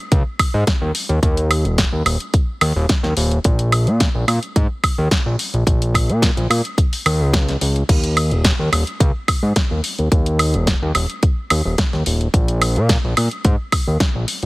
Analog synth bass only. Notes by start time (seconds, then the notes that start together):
0.12 C#2
0.54 G#2
0.82 D#2
1.09 D#2
1.23 D#2
1.64 D#1
1.92 D#2
2.06 D#1
2.61 D#2
2.76 D#1
3.03 D#2
3.17 D#1
3.45 A#1
3.87 A#2
4.15 A#1
4.28 A#2
4.56 G#2
4.98 D#2
5.26 A#1
5.54 A#1
5.67 A#1
6.09 A#2
6.37 A#1
6.50 A#2
7.06 D#2
7.21 C#2
7.61 C#2
7.89 D#2
8.31 D#1
8.59 D#2
8.72 D#1
9.00 C#2
9.43 G#2
9.71 D#2
9.99 D#2
10.12 D#2
10.54 D#1
10.82 D#2
10.95 D#1
11.51 D#2
11.65 D#1
11.93 D#2
12.07 D#1
12.34 A#1
12.76 A#2
13.04 A#1
13.18 A#2
13.45 G#2
13.87 D#2
14.15 A#1
14.43 A#1